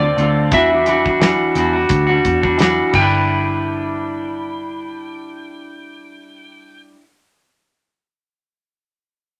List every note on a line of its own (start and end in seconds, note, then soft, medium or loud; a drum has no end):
0.00 0.11 D2 medium
0.00 0.17 F4 soft
0.00 0.53 D5 loud
0.04 0.17 A3 soft
0.04 0.18 C4 soft
0.17 0.52 D2 medium
0.17 0.51 D3 medium
0.17 0.52 A3 medium
0.17 0.53 C4 medium
0.17 closed hi-hat medium
0.21 0.53 F4 medium
0.52 1.51 E2 loud
0.52 0.71 E3 medium
0.52 0.71 G3 medium
0.52 0.72 D4 medium
0.52 0.69 F#4 medium
0.52 2.56 E5 medium
0.52 kick loud
0.52 closed hi-hat medium
0.70 0.85 G3 soft
0.70 0.86 D4 soft
0.70 0.86 F#4 medium
0.85 1.05 E3 medium
0.85 1.05 G3 medium
0.85 1.05 D4 medium
0.85 1.03 F#4 medium
0.85 closed hi-hat medium
1.05 1.20 G3 soft
1.05 1.21 D4 soft
1.05 1.21 F#4 soft
1.05 kick medium
1.20 1.53 E3 medium
1.20 1.55 G3 medium
1.20 1.56 D4 medium
1.20 1.56 F#4 medium
1.20 snare loud
1.20 closed hi-hat medium
1.54 1.83 E2 medium
1.54 1.74 E3 medium
1.54 1.75 G3 medium
1.54 1.74 D4 medium
1.54 1.72 F#4 medium
1.54 closed hi-hat medium
1.73 2.09 G3 soft
1.73 2.08 D4 soft
1.73 2.06 F#4 medium
1.89 2.18 D2 medium
1.89 kick medium
1.89 closed hi-hat medium
2.07 2.44 G3 soft
2.07 2.42 D4 medium
2.07 2.40 F#4 medium
2.25 2.80 E2 medium
2.25 kick medium
2.25 closed hi-hat medium
2.41 2.58 G3 soft
2.41 2.59 D4 soft
2.41 2.58 F#4 soft
2.41 kick medium
2.58 2.93 E3 medium
2.58 2.88 G3 medium
2.58 2.92 D4 medium
2.58 2.94 F#4 medium
2.58 snare loud
2.58 closed hi-hat medium
2.89 6.92 G3 medium
2.94 6.93 G1 medium
2.94 6.96 D4 medium
2.94 7.00 E4 medium
2.94 6.81 G5 medium
2.94 kick medium
2.94 crash medium
3.01 7.04 B4 medium